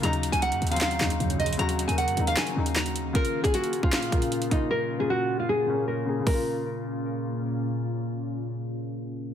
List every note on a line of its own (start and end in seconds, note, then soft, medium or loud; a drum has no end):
0.02 0.31 D#2 loud
0.02 0.52 C#3 loud
0.02 3.12 D#3 medium
0.02 0.53 F#3 loud
0.02 3.12 A#3 medium
0.02 3.12 C#4 medium
0.02 0.54 D#4 loud
0.02 3.12 F#4 medium
0.02 0.31 A#5 medium
0.02 closed hi-hat medium
0.13 closed hi-hat medium
0.23 closed hi-hat medium
0.32 0.53 C#2 loud
0.32 0.41 G#5 medium
0.32 closed hi-hat medium
0.42 0.70 F#5 medium
0.42 closed hi-hat medium
0.52 0.61 F#2 medium
0.52 closed hi-hat soft
0.62 0.99 D#2 loud
0.62 closed hi-hat soft
0.67 0.92 C#3 medium
0.67 closed hi-hat soft
0.71 0.93 F#3 medium
0.71 0.94 C4 medium
0.71 0.80 F5 medium
0.71 closed hi-hat medium
0.76 closed hi-hat medium
0.81 1.36 F5 medium
0.81 snare loud
0.81 clap loud
0.91 closed hi-hat medium
0.99 1.09 A#1 medium
0.99 1.19 D#2 loud
0.99 1.09 F#2 medium
0.99 1.42 C#3 medium
0.99 1.09 C#3 loud
0.99 1.43 F#3 medium
0.99 1.44 D#4 medium
0.99 snare medium
0.99 clap medium
1.10 closed hi-hat medium
1.20 1.57 A#1 loud
1.20 1.58 D#2 loud
1.20 1.57 F#2 loud
1.20 1.57 C#3 loud
1.20 closed hi-hat medium
1.30 closed hi-hat medium
1.39 1.56 D#5 medium
1.39 closed hi-hat soft
1.46 closed hi-hat medium
1.53 closed hi-hat medium
1.57 1.87 D#2 loud
1.57 1.80 C#3 loud
1.57 1.80 F#3 medium
1.57 1.81 F#4 loud
1.57 1.87 A#5 loud
1.57 closed hi-hat medium
1.69 closed hi-hat medium
1.79 closed hi-hat medium
1.87 2.09 D#2 loud
1.87 2.09 C#3 medium
1.87 2.10 F#3 medium
1.87 2.10 A#3 medium
1.87 1.96 G#5 medium
1.87 closed hi-hat medium
1.98 2.25 F#5 medium
1.98 closed hi-hat loud
2.08 2.17 F#2 loud
2.08 closed hi-hat soft
2.16 2.36 D#2 loud
2.16 2.45 C#3 medium
2.16 2.46 F#3 medium
2.16 2.47 D#4 medium
2.16 closed hi-hat soft
2.16 open hi-hat medium
2.27 2.36 F5 medium
2.27 closed hi-hat medium
2.37 2.74 G#5 medium
2.37 snare loud
2.37 clap medium
2.37 closed hi-hat medium
2.47 closed hi-hat medium
2.55 3.13 D#2 loud
2.55 2.98 C#3 medium
2.55 2.99 F#3 medium
2.55 3.00 D#4 medium
2.66 closed hi-hat medium
2.76 3.13 A#5 medium
2.76 snare loud
2.76 clap medium
2.76 closed hi-hat medium
2.86 closed hi-hat medium
2.96 closed hi-hat medium
3.13 6.24 A#2 medium
3.13 3.35 C#3 loud
3.13 3.36 A#3 medium
3.13 6.24 A#3 medium
3.13 6.24 C#4 medium
3.13 6.24 F4 medium
3.13 3.37 F4 loud
3.13 3.42 A#4 medium
3.13 kick loud
3.13 closed hi-hat medium
3.25 closed hi-hat medium
3.42 3.93 C#3 medium
3.42 3.94 A#3 medium
3.42 3.52 G#4 medium
3.42 3.95 G#4 medium
3.42 kick medium
3.42 closed hi-hat medium
3.54 3.82 F#4 medium
3.54 closed hi-hat medium
3.64 closed hi-hat soft
3.73 closed hi-hat medium
3.83 3.92 F4 medium
3.83 kick medium
3.93 4.48 F4 medium
3.93 snare loud
3.93 clap medium
3.93 closed hi-hat medium
4.03 closed hi-hat medium
4.11 4.40 C#3 medium
4.11 4.41 A#3 medium
4.11 4.42 F4 medium
4.11 kick loud
4.11 closed hi-hat medium
4.22 closed hi-hat medium
4.32 closed hi-hat medium
4.42 closed hi-hat medium
4.50 4.86 C#3 medium
4.50 4.87 A#3 medium
4.50 4.68 D#4 medium
4.50 4.88 F4 medium
4.50 kick medium
4.50 closed hi-hat medium
4.71 4.98 A#4 medium
4.98 5.49 C#3 medium
4.98 5.50 A#3 medium
4.98 5.50 F4 medium
4.98 5.08 G#4 medium
5.10 5.37 F#4 medium
5.40 5.48 F4 medium
5.49 5.86 G#4 medium
5.66 5.96 C#3 medium
5.66 5.96 A#3 medium
5.66 5.97 C#4 medium
5.88 6.24 A#4 medium
6.05 6.18 C#3 medium
6.05 6.21 A#3 medium
6.05 6.22 G#4 medium
6.20 9.34 C#3 medium
6.27 9.34 A#2 medium
6.27 9.34 A#3 medium
6.27 9.34 C#4 medium
6.27 9.34 F4 medium
6.27 7.40 A#4 medium
6.27 kick loud
6.27 open hi-hat medium
6.33 9.34 F4 medium